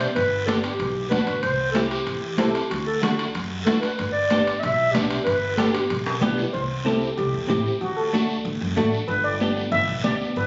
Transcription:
0.00 high timbale medium
0.00 short guiro medium
0.14 0.68 G1 medium
0.14 0.45 B4 loud
0.14 high conga soft
0.14 high timbale medium
0.14 long guiro medium
0.46 0.70 B3 medium
0.46 0.70 D4 medium
0.46 0.71 G4 medium
0.46 0.54 A4 medium
0.46 high conga medium
0.46 high timbale medium
0.46 short guiro medium
0.61 1.07 G4 medium
0.61 high timbale medium
0.61 short guiro medium
0.79 1.05 B1 medium
0.79 high conga soft
0.79 high timbale medium
0.79 long guiro medium
1.09 1.26 E2 medium
1.09 1.34 B3 medium
1.09 1.34 D4 medium
1.09 1.34 F#4 medium
1.09 1.40 B4 medium
1.09 high conga medium
1.09 high timbale medium
1.09 short guiro medium
1.27 1.42 D2 medium
1.27 high timbale medium
1.27 short guiro medium
1.42 1.95 C2 medium
1.42 1.71 C5 medium
1.42 high conga soft
1.42 high timbale medium
1.42 long guiro medium
1.72 1.97 C4 medium
1.72 1.98 E4 medium
1.72 1.80 A4 medium
1.72 high conga medium
1.72 high timbale medium
1.72 short guiro medium
1.76 1.98 G4 medium
1.89 2.35 G4 medium
1.89 high timbale medium
1.89 short guiro medium
2.07 2.39 E2 medium
2.07 high conga soft
2.07 high timbale medium
2.07 long guiro medium
2.37 2.52 C2 medium
2.37 2.61 C4 medium
2.37 2.62 E4 medium
2.37 2.68 G4 medium
2.37 2.62 A4 medium
2.37 high conga medium
2.37 high timbale medium
2.37 low timbale medium
2.37 short guiro medium
2.55 high timbale medium
2.55 short guiro medium
2.70 3.23 D2 medium
2.70 2.85 F#4 medium
2.70 high conga soft
2.70 high timbale medium
2.70 long guiro medium
2.87 3.21 A4 medium
3.02 3.25 A3 medium
3.02 3.25 D4 medium
3.02 3.26 F#4 medium
3.02 high conga medium
3.02 high timbale medium
3.02 short guiro medium
3.19 high timbale medium
3.19 short guiro medium
3.35 3.67 F#2 medium
3.35 high conga soft
3.35 high timbale medium
3.35 long guiro medium
3.65 3.80 D2 medium
3.65 3.89 A3 medium
3.65 3.89 D4 medium
3.65 3.90 F#4 medium
3.65 3.73 A4 medium
3.65 high conga medium
3.65 high timbale medium
3.65 low timbale medium
3.65 short guiro medium
3.81 4.11 B4 medium
3.81 high timbale medium
3.81 short guiro medium
3.99 4.50 G1 medium
3.99 high conga soft
3.99 high timbale medium
3.99 long guiro medium
4.12 4.61 D5 loud
4.30 4.53 B3 medium
4.30 4.53 D4 medium
4.30 4.54 G4 medium
4.30 high conga medium
4.30 high timbale medium
4.30 short guiro medium
4.47 high timbale medium
4.47 short guiro medium
4.60 4.89 B1 medium
4.60 4.93 E5 medium
4.60 high conga soft
4.60 high timbale medium
4.60 long guiro medium
4.92 5.08 B1 medium
4.92 5.17 B3 medium
4.92 5.17 D4 medium
4.92 5.23 G4 medium
4.92 5.17 G4 medium
4.92 high conga medium
4.92 high timbale medium
4.92 short guiro medium
5.11 high timbale medium
5.11 short guiro medium
5.24 5.78 G1 medium
5.24 5.55 B4 loud
5.24 high conga soft
5.24 high timbale medium
5.24 long guiro medium
5.56 5.80 B3 medium
5.56 5.81 D4 medium
5.56 5.81 G4 medium
5.56 5.72 A4 medium
5.56 high conga medium
5.56 high timbale medium
5.56 short guiro medium
5.72 6.33 G4 medium
5.72 high timbale medium
5.72 short guiro medium
5.89 6.16 B1 medium
5.89 high conga soft
5.89 high timbale medium
5.89 long guiro medium
6.06 high timbale medium
6.21 6.35 B1 medium
6.21 6.44 B3 medium
6.21 6.44 D4 medium
6.21 6.44 G4 medium
6.21 6.55 B4 medium
6.21 high conga medium
6.21 low timbale medium
6.21 short guiro medium
6.38 low timbale medium
6.38 short guiro medium
6.53 7.05 C2 medium
6.53 6.86 C5 medium
6.53 high conga soft
6.53 long guiro medium
6.85 7.08 C4 medium
6.85 7.08 E4 medium
6.85 7.08 G4 medium
6.85 7.15 A4 medium
6.85 high conga medium
6.85 short guiro medium
7.01 short guiro medium
7.17 7.31 C2 medium
7.17 7.48 G4 medium
7.17 high conga soft
7.17 long guiro medium
7.34 7.47 E2 medium
7.48 7.62 A1 loud
7.48 7.71 C4 medium
7.48 7.71 E4 medium
7.48 7.72 G4 medium
7.48 7.79 G4 medium
7.48 high conga medium
7.48 short guiro medium
7.66 short guiro medium
7.81 8.33 D2 medium
7.81 7.88 F#4 medium
7.81 high conga soft
7.81 long guiro medium
7.97 8.57 A4 medium
8.13 8.36 A3 medium
8.13 8.36 D4 medium
8.13 8.36 F#4 medium
8.13 high conga medium
8.13 short guiro medium
8.29 short guiro medium
8.45 8.58 D2 loud
8.45 high conga soft
8.45 long guiro medium
8.61 8.74 F#2 medium
8.76 8.90 A1 medium
8.76 8.99 A3 medium
8.76 8.99 D4 medium
8.76 8.99 F#4 medium
8.76 9.07 A4 medium
8.76 high conga medium
8.76 short guiro medium
8.92 short guiro medium
9.08 9.60 G1 medium
9.08 9.25 B4 medium
9.08 high conga soft
9.08 long guiro medium
9.24 9.74 D5 medium
9.40 9.63 B3 medium
9.40 9.63 D4 medium
9.40 9.63 G4 medium
9.40 high conga medium
9.40 short guiro medium
9.56 short guiro medium
9.72 9.85 G1 medium
9.72 10.05 E5 loud
9.72 high conga soft
9.72 long guiro medium
9.89 10.02 B1 medium
10.04 10.17 D2 medium
10.04 10.27 B3 medium
10.04 10.27 D4 soft
10.04 10.27 G4 medium
10.04 10.37 D5 medium
10.04 high conga medium
10.04 short guiro medium
10.20 short guiro medium
10.36 10.47 G1 medium
10.36 10.47 B4 medium
10.36 high conga soft
10.36 long guiro medium

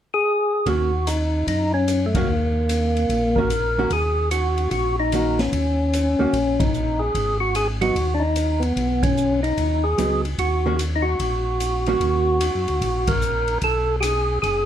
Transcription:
0.14 0.69 G#4 loud
0.66 1.43 D#2 medium
0.66 0.90 D#3 soft
0.66 0.90 A#3 medium
0.66 0.91 C#4 medium
0.66 0.91 F#4 medium
0.66 1.09 F#4 medium
0.66 kick soft
0.66 ride soft
1.07 1.47 D#4 medium
1.07 hi-hat pedal medium
1.07 ride medium
1.47 2.24 F#2 medium
1.47 1.72 D#4 medium
1.47 kick soft
1.47 ride medium
1.74 2.06 C#4 medium
1.88 hi-hat pedal soft
1.88 ride medium
2.06 2.15 A3 medium
2.15 2.28 D#3 medium
2.15 3.40 A#3 medium
2.15 2.28 A#3 medium
2.15 2.28 C#4 medium
2.15 2.28 F#4 medium
2.15 kick medium
2.15 ride medium
2.28 3.06 D#2 medium
2.69 hi-hat pedal medium
2.69 ride medium
2.97 ride soft
3.09 3.87 A#1 medium
3.09 kick soft
3.09 ride soft
3.36 3.49 D#3 soft
3.36 3.50 A#3 medium
3.36 3.50 C#4 medium
3.36 3.50 F#4 medium
3.36 3.92 A#4 medium
3.36 kick medium
3.50 hi-hat pedal soft
3.50 ride medium
3.78 3.90 D#3 medium
3.78 3.90 A#3 medium
3.78 3.90 C#4 medium
3.78 3.91 F#4 medium
3.90 4.67 D#2 medium
3.90 4.29 G#4 medium
3.90 kick soft
3.90 ride soft
4.31 4.70 F#4 medium
4.31 hi-hat pedal soft
4.31 ride medium
4.58 ride soft
4.71 5.48 A#1 medium
4.71 4.96 F#4 medium
4.71 kick soft
4.71 ride soft
5.00 5.41 D#4 loud
5.12 5.36 D#3 medium
5.12 5.37 A#3 soft
5.12 5.37 C#4 medium
5.12 5.37 F#4 medium
5.12 hi-hat pedal soft
5.12 ride medium
5.39 6.64 C#4 medium
5.39 snare soft
5.39 ride soft
5.52 6.15 D#2 medium
5.52 kick soft
5.52 ride medium
5.93 hi-hat pedal medium
5.93 ride medium
6.19 6.27 D#2 soft
6.19 6.32 D#3 medium
6.19 6.32 A#3 medium
6.19 6.33 C#4 medium
6.19 6.33 F#4 medium
6.33 7.10 A#1 medium
6.33 kick soft
6.33 ride soft
6.59 7.01 D#4 medium
6.59 kick medium
6.59 ride medium
6.74 hi-hat pedal soft
6.99 7.38 G#4 medium
7.14 7.91 G#1 medium
7.14 kick soft
7.14 ride soft
7.40 7.55 F#4 medium
7.55 7.68 G#4 medium
7.55 hi-hat pedal soft
7.55 ride medium
7.81 7.94 F#3 medium
7.81 7.95 B3 medium
7.81 7.95 D#4 medium
7.81 8.14 F#4 medium
7.81 ride soft
7.95 8.72 D#2 medium
7.95 kick soft
7.95 ride medium
8.14 8.23 D4 medium
8.20 8.63 D#4 medium
8.36 hi-hat pedal soft
8.36 ride medium
8.60 9.03 B3 medium
8.60 ride soft
8.76 9.53 B1 medium
8.76 kick soft
8.76 ride soft
9.03 9.41 C#4 medium
9.03 kick medium
9.03 ride medium
9.17 hi-hat pedal soft
9.43 9.85 D#4 medium
9.43 ride soft
9.57 9.95 D#2 medium
9.57 kick soft
9.57 ride soft
9.84 10.21 G#4 medium
9.98 10.36 C#2 medium
9.98 10.22 F#3 medium
9.98 10.22 B3 medium
9.98 10.23 D#4 medium
9.98 hi-hat pedal soft
9.98 ride medium
10.25 ride soft
10.38 11.15 D#2 medium
10.38 10.76 F#4 medium
10.38 kick soft
10.38 ride medium
10.66 10.78 D#3 medium
10.66 10.78 A#3 medium
10.66 10.78 C#4 medium
10.66 10.79 F#4 medium
10.79 hi-hat pedal medium
10.79 ride medium
10.96 11.05 D#4 medium
11.02 13.12 F#4 medium
11.19 11.96 A#1 medium
11.19 kick soft
11.19 ride medium
11.60 hi-hat pedal soft
11.60 ride medium
11.86 12.39 D#3 medium
11.86 12.39 A#3 medium
11.86 12.39 C#4 medium
11.86 12.39 F#4 medium
11.86 ride soft
12.00 12.50 D#2 medium
12.00 kick soft
12.00 ride soft
12.41 hi-hat pedal soft
12.41 ride medium
12.55 12.67 F#2 soft
12.68 12.81 D2 medium
12.68 ride soft
12.81 13.58 A#1 medium
12.81 kick soft
12.81 ride medium
13.07 13.58 A#4 medium
13.07 kick medium
13.07 ride medium
13.21 hi-hat pedal soft
13.48 ride soft
13.61 14.39 B1 medium
13.61 13.96 A4 medium
13.61 kick soft
13.61 ride medium
14.00 14.04 G4 medium
14.00 14.39 G#4 medium
14.00 hi-hat pedal medium
14.00 ride medium
14.42 14.65 F#1 medium
14.42 14.65 G#4 medium
14.42 kick soft
14.42 ride soft

